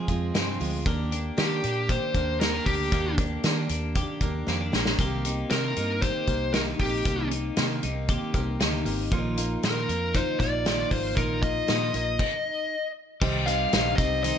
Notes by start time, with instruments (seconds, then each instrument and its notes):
Already playing: clean electric guitar F3 C4 G#4
0.08 fingered electric bass F2, steel-string acoustic guitar F3 G#3 C4 F4, kick, closed hi-hat
0.34 steel-string acoustic guitar F2 C3 F3 G#3 C4 F4, fingered electric bass G2, snare, closed hi-hat
0.60 fingered electric bass D2, steel-string acoustic guitar F3 G#3 C4 F4, open hi-hat
0.86 fingered electric bass D#2, steel-string acoustic guitar D#3 A#3 D4 G4, kick, closed hi-hat
1.11 steel-string acoustic guitar A#3 D4 G4, closed hi-hat
1.37 steel-string acoustic guitar D#3 A#3 D4 G4, fingered electric bass D#3, lead electric guitar G4, snare, closed hi-hat
1.63 fingered electric bass A#2, steel-string acoustic guitar A#3 D4 G4, closed hi-hat
1.88 steel-string acoustic guitar D#3 A#3 D4 G4, lead electric guitar C5, kick, closed hi-hat
2.14 fingered electric bass D#2, steel-string acoustic guitar A#3 D4 G4, kick, closed hi-hat
2.40 steel-string acoustic guitar D#3 A#3 D4 G4, clean electric guitar C4, lead electric guitar A#4, snare, closed hi-hat
2.55 clean electric guitar D4
2.66 fingered electric bass D2, steel-string acoustic guitar A#3 D4 G4, lead electric guitar G4, kick, open hi-hat
2.92 fingered electric bass D#2, steel-string acoustic guitar D#3 A#3 D4 G4, kick, closed hi-hat
3.18 steel-string acoustic guitar A#3 D4 G4, kick, closed hi-hat
3.44 steel-string acoustic guitar D#3 A#3 D4 G4, fingered electric bass D#3, snare, closed hi-hat
3.69 fingered electric bass D#2, steel-string acoustic guitar A#3 D4 G4, closed hi-hat
3.95 steel-string acoustic guitar D#3 A#3 D4 G4, kick, closed hi-hat
4.21 fingered electric bass D#2, steel-string acoustic guitar A#3 D4 G4, kick, closed hi-hat
4.47 fingered electric bass F2, steel-string acoustic guitar D#3 A#3 D4 G4, clean electric guitar C4, snare
4.61 clean electric guitar D4
4.72 fingered electric bass A#1, steel-string acoustic guitar A#3 D4 G4, snare
4.86 snare
4.99 fingered electric bass C2, steel-string acoustic guitar C3 D#3 A#3 C4 G4, kick, closed hi-hat
5.25 steel-string acoustic guitar A#3 C4 G4, clean electric guitar D#4, closed hi-hat
5.50 steel-string acoustic guitar C3 D#3 A#3 C4 G4, fingered electric bass C3, lead electric guitar A#4, snare, closed hi-hat
5.76 fingered electric bass G2, steel-string acoustic guitar A#3 C4 G4, clean electric guitar D#4, closed hi-hat
6.02 steel-string acoustic guitar D#3 A#3 C4 G4, lead electric guitar C5, kick, closed hi-hat
6.27 fingered electric bass C2, steel-string acoustic guitar A#3 C4 G4, kick, closed hi-hat
6.53 steel-string acoustic guitar C3 D#3 A#3 C4 G4, clean electric guitar D#4, lead electric guitar A#4, snare, closed hi-hat
6.79 fingered electric bass A#1, steel-string acoustic guitar A#3 C4 G4, lead electric guitar G4, kick, open hi-hat
7.05 fingered electric bass C2, steel-string acoustic guitar C3 D#3 A#3 C4 G4, kick, closed hi-hat
7.31 steel-string acoustic guitar A#3 C4 G4, clean electric guitar D#4, closed hi-hat
7.57 steel-string acoustic guitar C3 D#3 A#3 C4 G4, fingered electric bass C3, snare, closed hi-hat
7.83 fingered electric bass C2, steel-string acoustic guitar A#3 C4 G4, clean electric guitar D#4, closed hi-hat
8.08 steel-string acoustic guitar D#3 A#3 C4 G4, kick, closed hi-hat
8.34 fingered electric bass C2, steel-string acoustic guitar A#3 C4 G4, kick, closed hi-hat
8.60 fingered electric bass D2, steel-string acoustic guitar C3 D#3 A#3 C4 G4, clean electric guitar D#4, snare, closed hi-hat
8.85 fingered electric bass G#1, steel-string acoustic guitar A#3 C4 G4, open hi-hat
9.12 fingered electric bass A#1, steel-string acoustic guitar A#2 D#3 A#3 D#4 F4, clean electric guitar F3, kick, closed hi-hat
9.37 steel-string acoustic guitar A#3 D#4 F4, closed hi-hat
9.63 steel-string acoustic guitar A#2 D#3 A#3 D#4 F4, fingered electric bass A#2, clean electric guitar F3, lead electric guitar A#4, snare, closed hi-hat
9.88 fingered electric bass F2, steel-string acoustic guitar A#3 D#4 F4, closed hi-hat
10.14 steel-string acoustic guitar D#3 A#3 D#4 F4, lead electric guitar C5, kick, closed hi-hat
10.39 fingered electric bass A#1, clean electric guitar F3, steel-string acoustic guitar A#3 D#4 F4, lead electric guitar D5, kick, snare, closed hi-hat
10.65 steel-string acoustic guitar A#2 D#3 A#3 D#4 F4, snare, closed hi-hat
10.90 fingered electric bass G#1, clean electric guitar F3, steel-string acoustic guitar A#3 D#4 F4, lead electric guitar C5, kick, open hi-hat
11.16 fingered electric bass A#1, steel-string acoustic guitar A#2 D#3 A#3 D#4 F4, clean electric guitar F3, lead electric guitar A#4, kick, closed hi-hat
11.41 steel-string acoustic guitar A#3 D#4 F4, lead electric guitar D#5, kick, closed hi-hat
11.67 steel-string acoustic guitar A#2 D#3 A#3 D#4 F4, fingered electric bass A#2, clean electric guitar F3, snare, closed hi-hat
11.93 fingered electric bass A#1, steel-string acoustic guitar A#3 D#4 F4, closed hi-hat
12.19 kick, crash
13.21 fingered electric bass C2, steel-string acoustic guitar C3 D#3 C4 D#4 G4, clean electric guitar G3, upright piano D#4 G4 C5, kick, crash, tambourine
13.46 clean electric guitar G3, steel-string acoustic guitar C4 D#4 G4, upright piano D#4 G4 C5, lead electric guitar F5, closed hi-hat, tambourine
13.72 fingered electric bass A#1, steel-string acoustic guitar C3 D#3 C4 D#4 G4, upright piano D#4 G4 C5, snare, closed hi-hat, tambourine
13.96 fingered electric bass C2, upright piano D#4 G4 C5, steel-string acoustic guitar D#4 G4, lead electric guitar D#5, kick, closed hi-hat, tambourine
14.00 steel-string acoustic guitar C4
14.23 steel-string acoustic guitar D#3 C4 D#4 G4, upright piano D#4 G4 C5, lead electric guitar D#5, closed hi-hat, tambourine